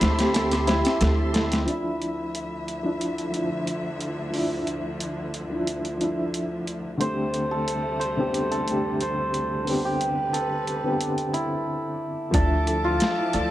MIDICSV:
0, 0, Header, 1, 7, 480
1, 0, Start_track
1, 0, Tempo, 666667
1, 1203, Time_signature, 4, 2, 24, 8
1, 9726, End_track
2, 0, Start_track
2, 0, Title_t, "Felt piano"
2, 0, Program_c, 0, 0
2, 0, Control_c, 0, 64, 127
2, 0, Note_on_c, 0, 64, 73
2, 0, Note_on_c, 0, 67, 71
2, 0, Note_on_c, 0, 69, 75
2, 0, Note_on_c, 0, 72, 87
2, 9, Note_off_c, 0, 72, 0
2, 9, Note_on_c, 0, 72, 78
2, 126, Note_off_c, 0, 72, 0
2, 245, Note_off_c, 0, 69, 0
2, 245, Note_on_c, 0, 69, 90
2, 357, Note_off_c, 0, 69, 0
2, 372, Note_off_c, 0, 67, 0
2, 372, Note_on_c, 0, 67, 71
2, 479, Note_off_c, 0, 67, 0
2, 611, Note_on_c, 0, 76, 78
2, 675, Note_off_c, 0, 76, 0
2, 725, Note_on_c, 0, 69, 82
2, 837, Note_off_c, 0, 69, 0
2, 964, Note_on_c, 0, 69, 78
2, 1077, Note_off_c, 0, 69, 0
2, 1089, Note_on_c, 0, 60, 74
2, 1192, Note_off_c, 0, 60, 0
2, 1211, Control_c, 0, 64, 0
2, 1218, Note_off_c, 0, 64, 0
2, 8885, Note_on_c, 0, 74, 84
2, 9003, Note_off_c, 0, 74, 0
2, 9004, Control_c, 0, 64, 127
2, 9127, Note_on_c, 0, 69, 74
2, 9239, Note_off_c, 0, 69, 0
2, 9252, Note_on_c, 0, 65, 75
2, 9359, Note_off_c, 0, 65, 0
2, 9489, Note_on_c, 0, 64, 70
2, 9592, Note_off_c, 0, 64, 0
2, 9603, Note_on_c, 0, 74, 76
2, 9723, Note_off_c, 0, 74, 0
2, 9726, End_track
3, 0, Start_track
3, 0, Title_t, "Hammered dulcimer"
3, 0, Program_c, 1, 15
3, 0, Note_on_c, 1, 64, 90
3, 0, Note_on_c, 1, 69, 93
3, 480, Note_off_c, 1, 64, 0
3, 483, Note_on_c, 1, 64, 90
3, 919, Note_off_c, 1, 69, 0
3, 2990, Note_off_c, 1, 64, 0
3, 5043, Note_on_c, 1, 72, 87
3, 5409, Note_on_c, 1, 69, 79
3, 5754, Note_off_c, 1, 72, 0
3, 5757, Note_on_c, 1, 72, 78
3, 6127, Note_off_c, 1, 69, 0
3, 6130, Note_on_c, 1, 69, 81
3, 6487, Note_off_c, 1, 72, 0
3, 6490, Note_on_c, 1, 72, 75
3, 7092, Note_on_c, 1, 67, 81
3, 7436, Note_off_c, 1, 69, 0
3, 7439, Note_on_c, 1, 69, 79
3, 8161, Note_on_c, 1, 64, 84
3, 8390, Note_off_c, 1, 72, 0
3, 8885, Note_off_c, 1, 69, 0
3, 8888, Note_on_c, 1, 69, 93
3, 9247, Note_on_c, 1, 65, 86
3, 9290, Note_off_c, 1, 64, 0
3, 9352, Note_off_c, 1, 67, 0
3, 9600, Note_off_c, 1, 69, 0
3, 9603, Note_on_c, 1, 69, 95
3, 9726, Note_off_c, 1, 65, 0
3, 9726, Note_off_c, 1, 69, 0
3, 9726, End_track
4, 0, Start_track
4, 0, Title_t, "String section"
4, 0, Program_c, 2, 48
4, 0, Note_on_c, 2, 67, 87
4, 0, Note_on_c, 2, 76, 79
4, 0, Note_on_c, 2, 81, 80
4, 0, Note_on_c, 2, 84, 94
4, 1171, Note_off_c, 2, 84, 0
4, 1172, Note_off_c, 2, 67, 0
4, 1173, Note_off_c, 2, 81, 0
4, 1175, Note_off_c, 2, 76, 0
4, 1191, Note_on_c, 2, 38, 72
4, 1192, Note_on_c, 2, 53, 64
4, 1194, Note_on_c, 2, 76, 80
4, 1195, Note_on_c, 2, 50, 68
4, 5009, Note_off_c, 2, 38, 0
4, 5009, Note_off_c, 2, 53, 0
4, 5010, Note_off_c, 2, 50, 0
4, 5010, Note_off_c, 2, 76, 0
4, 5041, Note_on_c, 2, 57, 83
4, 5043, Note_on_c, 2, 38, 74
4, 5043, Note_on_c, 2, 48, 67
4, 5043, Note_on_c, 2, 55, 69
4, 6943, Note_off_c, 2, 57, 0
4, 6961, Note_on_c, 2, 71, 82
4, 8374, Note_off_c, 2, 38, 0
4, 8374, Note_off_c, 2, 48, 0
4, 8375, Note_off_c, 2, 55, 0
4, 8387, Note_off_c, 2, 71, 0
4, 8879, Note_on_c, 2, 81, 80
4, 8882, Note_on_c, 2, 53, 87
4, 8882, Note_on_c, 2, 76, 81
4, 8883, Note_on_c, 2, 86, 96
4, 9726, Note_off_c, 2, 53, 0
4, 9726, Note_off_c, 2, 76, 0
4, 9726, Note_off_c, 2, 81, 0
4, 9726, Note_off_c, 2, 86, 0
4, 9726, End_track
5, 0, Start_track
5, 0, Title_t, "Upright piano"
5, 0, Program_c, 3, 0
5, 0, Control_c, 3, 64, 127
5, 0, Note_on_c, 3, 60, 85
5, 0, Note_on_c, 3, 67, 97
5, 102, Note_off_c, 3, 60, 0
5, 114, Note_off_c, 3, 67, 0
5, 131, Note_on_c, 3, 60, 78
5, 142, Note_on_c, 3, 67, 100
5, 462, Note_off_c, 3, 60, 0
5, 467, Note_off_c, 3, 67, 0
5, 488, Note_on_c, 3, 60, 74
5, 511, Note_on_c, 3, 67, 89
5, 1178, Note_off_c, 3, 60, 0
5, 1182, Note_on_c, 3, 53, 72
5, 1190, Note_off_c, 3, 67, 0
5, 1204, Note_on_c, 3, 62, 67
5, 1213, Control_c, 3, 64, 0
5, 1229, Note_on_c, 3, 64, 77
5, 1359, Control_c, 3, 64, 127
5, 2008, Note_off_c, 3, 53, 0
5, 2019, Note_off_c, 3, 62, 0
5, 2032, Note_off_c, 3, 64, 0
5, 2038, Note_on_c, 3, 53, 69
5, 2051, Note_on_c, 3, 62, 62
5, 2061, Note_on_c, 3, 64, 72
5, 2369, Note_off_c, 3, 53, 0
5, 2380, Note_on_c, 3, 53, 67
5, 2381, Note_off_c, 3, 62, 0
5, 2386, Note_off_c, 3, 64, 0
5, 2402, Note_on_c, 3, 62, 56
5, 2426, Note_on_c, 3, 64, 67
5, 3084, Note_off_c, 3, 53, 0
5, 3095, Note_off_c, 3, 62, 0
5, 3100, Note_on_c, 3, 53, 71
5, 3107, Note_off_c, 3, 64, 0
5, 3123, Note_on_c, 3, 62, 68
5, 3146, Note_on_c, 3, 64, 78
5, 3927, Note_off_c, 3, 53, 0
5, 3939, Note_off_c, 3, 62, 0
5, 3950, Note_off_c, 3, 64, 0
5, 3960, Note_on_c, 3, 53, 72
5, 3972, Note_on_c, 3, 62, 67
5, 3982, Note_on_c, 3, 64, 78
5, 4291, Note_off_c, 3, 53, 0
5, 4301, Note_on_c, 3, 53, 68
5, 4302, Note_off_c, 3, 62, 0
5, 4307, Note_off_c, 3, 64, 0
5, 4324, Note_on_c, 3, 62, 62
5, 4346, Note_on_c, 3, 64, 79
5, 5005, Note_off_c, 3, 53, 0
5, 5016, Note_off_c, 3, 62, 0
5, 5023, Note_on_c, 3, 50, 79
5, 5027, Note_off_c, 3, 64, 0
5, 5036, Note_on_c, 3, 57, 69
5, 5051, Note_on_c, 3, 60, 68
5, 5052, Control_c, 3, 64, 0
5, 5068, Note_on_c, 3, 67, 83
5, 5169, Control_c, 3, 64, 127
5, 5848, Note_off_c, 3, 50, 0
5, 5855, Note_off_c, 3, 57, 0
5, 5863, Note_off_c, 3, 60, 0
5, 5871, Note_off_c, 3, 67, 0
5, 5883, Note_on_c, 3, 50, 75
5, 5890, Note_on_c, 3, 59, 66
5, 5899, Note_on_c, 3, 60, 68
5, 5906, Note_on_c, 3, 67, 83
5, 6216, Note_off_c, 3, 50, 0
5, 6221, Note_off_c, 3, 59, 0
5, 6225, Note_off_c, 3, 60, 0
5, 6227, Note_on_c, 3, 50, 70
5, 6229, Note_off_c, 3, 67, 0
5, 6240, Note_on_c, 3, 57, 59
5, 6256, Note_on_c, 3, 60, 61
5, 6272, Note_on_c, 3, 67, 79
5, 6928, Note_off_c, 3, 50, 0
5, 6934, Note_off_c, 3, 57, 0
5, 6942, Note_off_c, 3, 60, 0
5, 6943, Note_on_c, 3, 50, 77
5, 6950, Note_off_c, 3, 67, 0
5, 6957, Note_on_c, 3, 59, 68
5, 6974, Note_on_c, 3, 60, 69
5, 6987, Note_on_c, 3, 67, 81
5, 7769, Note_off_c, 3, 50, 0
5, 7776, Note_off_c, 3, 59, 0
5, 7784, Note_off_c, 3, 60, 0
5, 7791, Note_off_c, 3, 67, 0
5, 7802, Note_on_c, 3, 50, 75
5, 7810, Note_on_c, 3, 59, 74
5, 7816, Note_on_c, 3, 60, 64
5, 7825, Note_on_c, 3, 67, 86
5, 8137, Note_off_c, 3, 50, 0
5, 8141, Note_off_c, 3, 59, 0
5, 8144, Note_off_c, 3, 60, 0
5, 8149, Note_off_c, 3, 67, 0
5, 8864, Note_on_c, 3, 53, 87
5, 8884, Note_on_c, 3, 62, 78
5, 8891, Control_c, 3, 64, 0
5, 8908, Note_on_c, 3, 76, 100
5, 9038, Control_c, 3, 64, 127
5, 9689, Note_off_c, 3, 53, 0
5, 9699, Note_off_c, 3, 62, 0
5, 9711, Note_off_c, 3, 76, 0
5, 9726, End_track
6, 0, Start_track
6, 0, Title_t, "Upright bass"
6, 0, Program_c, 4, 32
6, 10, Note_on_c, 4, 38, 83
6, 588, Note_off_c, 4, 38, 0
6, 728, Note_on_c, 4, 38, 107
6, 1184, Note_off_c, 4, 38, 0
6, 8887, Note_on_c, 4, 38, 103
6, 9343, Note_off_c, 4, 38, 0
6, 9606, Note_on_c, 4, 38, 73
6, 9726, Note_off_c, 4, 38, 0
6, 9726, End_track
7, 0, Start_track
7, 0, Title_t, "Drums"
7, 8, Note_on_c, 9, 42, 80
7, 21, Note_on_c, 9, 38, 111
7, 80, Note_off_c, 9, 42, 0
7, 93, Note_off_c, 9, 38, 0
7, 134, Note_on_c, 9, 42, 82
7, 147, Note_on_c, 9, 38, 104
7, 206, Note_off_c, 9, 42, 0
7, 219, Note_off_c, 9, 38, 0
7, 247, Note_on_c, 9, 42, 79
7, 260, Note_on_c, 9, 38, 101
7, 319, Note_off_c, 9, 42, 0
7, 332, Note_off_c, 9, 38, 0
7, 371, Note_on_c, 9, 42, 75
7, 383, Note_on_c, 9, 38, 96
7, 443, Note_off_c, 9, 42, 0
7, 455, Note_off_c, 9, 38, 0
7, 486, Note_on_c, 9, 42, 79
7, 498, Note_on_c, 9, 38, 107
7, 558, Note_off_c, 9, 42, 0
7, 570, Note_off_c, 9, 38, 0
7, 611, Note_on_c, 9, 42, 80
7, 624, Note_on_c, 9, 38, 106
7, 683, Note_off_c, 9, 42, 0
7, 696, Note_off_c, 9, 38, 0
7, 725, Note_on_c, 9, 42, 85
7, 737, Note_on_c, 9, 38, 112
7, 797, Note_off_c, 9, 42, 0
7, 809, Note_off_c, 9, 38, 0
7, 966, Note_on_c, 9, 42, 84
7, 978, Note_on_c, 9, 38, 112
7, 1038, Note_off_c, 9, 42, 0
7, 1050, Note_off_c, 9, 38, 0
7, 1093, Note_on_c, 9, 42, 78
7, 1105, Note_on_c, 9, 38, 105
7, 1165, Note_off_c, 9, 42, 0
7, 1177, Note_off_c, 9, 38, 0
7, 1208, Note_on_c, 9, 42, 76
7, 1280, Note_off_c, 9, 42, 0
7, 1451, Note_on_c, 9, 42, 54
7, 1523, Note_off_c, 9, 42, 0
7, 1690, Note_on_c, 9, 42, 73
7, 1762, Note_off_c, 9, 42, 0
7, 1931, Note_on_c, 9, 42, 54
7, 2003, Note_off_c, 9, 42, 0
7, 2168, Note_on_c, 9, 42, 68
7, 2240, Note_off_c, 9, 42, 0
7, 2292, Note_on_c, 9, 42, 36
7, 2364, Note_off_c, 9, 42, 0
7, 2403, Note_on_c, 9, 42, 60
7, 2475, Note_off_c, 9, 42, 0
7, 2645, Note_on_c, 9, 42, 70
7, 2717, Note_off_c, 9, 42, 0
7, 2884, Note_on_c, 9, 42, 62
7, 2956, Note_off_c, 9, 42, 0
7, 3122, Note_on_c, 9, 46, 67
7, 3194, Note_off_c, 9, 46, 0
7, 3363, Note_on_c, 9, 42, 57
7, 3435, Note_off_c, 9, 42, 0
7, 3603, Note_on_c, 9, 42, 76
7, 3675, Note_off_c, 9, 42, 0
7, 3844, Note_on_c, 9, 42, 58
7, 3916, Note_off_c, 9, 42, 0
7, 4085, Note_on_c, 9, 42, 72
7, 4157, Note_off_c, 9, 42, 0
7, 4211, Note_on_c, 9, 42, 36
7, 4283, Note_off_c, 9, 42, 0
7, 4326, Note_on_c, 9, 42, 58
7, 4398, Note_off_c, 9, 42, 0
7, 4565, Note_on_c, 9, 42, 72
7, 4637, Note_off_c, 9, 42, 0
7, 4805, Note_on_c, 9, 42, 59
7, 4877, Note_off_c, 9, 42, 0
7, 5045, Note_on_c, 9, 42, 73
7, 5117, Note_off_c, 9, 42, 0
7, 5283, Note_on_c, 9, 42, 58
7, 5355, Note_off_c, 9, 42, 0
7, 5528, Note_on_c, 9, 42, 80
7, 5600, Note_off_c, 9, 42, 0
7, 5768, Note_on_c, 9, 42, 56
7, 5840, Note_off_c, 9, 42, 0
7, 6006, Note_on_c, 9, 42, 74
7, 6078, Note_off_c, 9, 42, 0
7, 6132, Note_on_c, 9, 42, 37
7, 6204, Note_off_c, 9, 42, 0
7, 6247, Note_on_c, 9, 42, 62
7, 6319, Note_off_c, 9, 42, 0
7, 6484, Note_on_c, 9, 42, 69
7, 6556, Note_off_c, 9, 42, 0
7, 6725, Note_on_c, 9, 42, 63
7, 6797, Note_off_c, 9, 42, 0
7, 6965, Note_on_c, 9, 46, 73
7, 7037, Note_off_c, 9, 46, 0
7, 7206, Note_on_c, 9, 42, 62
7, 7278, Note_off_c, 9, 42, 0
7, 7446, Note_on_c, 9, 42, 77
7, 7518, Note_off_c, 9, 42, 0
7, 7686, Note_on_c, 9, 42, 57
7, 7758, Note_off_c, 9, 42, 0
7, 7924, Note_on_c, 9, 42, 76
7, 7996, Note_off_c, 9, 42, 0
7, 8048, Note_on_c, 9, 42, 35
7, 8120, Note_off_c, 9, 42, 0
7, 8166, Note_on_c, 9, 42, 58
7, 8238, Note_off_c, 9, 42, 0
7, 8883, Note_on_c, 9, 42, 94
7, 8884, Note_on_c, 9, 36, 111
7, 8955, Note_off_c, 9, 42, 0
7, 8956, Note_off_c, 9, 36, 0
7, 9124, Note_on_c, 9, 42, 69
7, 9196, Note_off_c, 9, 42, 0
7, 9362, Note_on_c, 9, 42, 89
7, 9374, Note_on_c, 9, 38, 122
7, 9434, Note_off_c, 9, 42, 0
7, 9446, Note_off_c, 9, 38, 0
7, 9600, Note_on_c, 9, 42, 70
7, 9672, Note_off_c, 9, 42, 0
7, 9726, End_track
0, 0, End_of_file